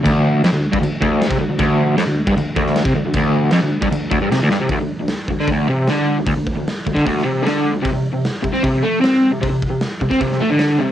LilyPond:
<<
  \new Staff \with { instrumentName = "Overdriven electric guitar" } { \clef bass \time 4/4 \key c \lydian \tempo 4 = 153 d,4 f,16 d,8 g,16 d,8 d,8. c16 d,16 d,16 | d,4 f,16 d,8 g,16 d,8 d,8. c16 d,16 d,16 | d,4 f,16 d,8 g,16 d,8 d,16 g,16 c16 d,16 g,16 c16 | d,16 d,8 d,8 r16 d,16 d16 d,8 c8 d8. d,16 |
d,16 d,8 d,8 r16 d,16 d16 d,8 c8 d8. d,16 | c16 c8 c8 r16 c16 c'16 c8 a8 c'8. c16 | c16 c8 c8 r16 c16 c'16 c8 a16 d8. c8 | }
  \new DrumStaff \with { instrumentName = "Drums" } \drummode { \time 4/4 <cymc bd>4 <cymc sn>8. bd16 cymc8 bd8 <cymc sn>16 <bd sn>8. | <cymc bd>4 <cymc sn>8. bd16 cymc8 bd16 sn16 <cymc sn>16 bd8. | <cymc bd>4 <cymc sn>8. bd16 cymc8 bd8 <cymc sn>16 sn16 sn8 | <hho bd>4 <hho sn>8 bd16 sn16 <hho bd>4 <hho sn>4 |
<hho bd>8 bd8 <hho sn>8 bd16 <bd sn>16 <hho bd>16 sn8. <hho sn>4 | <hho bd>4 <hho sn>8 bd16 sn16 <hho bd>4 <hho sn>4 | <hho bd>8 bd8 <hho sn>8 bd16 <bd sn>16 <hho bd>16 sn8. <hho sn>4 | }
>>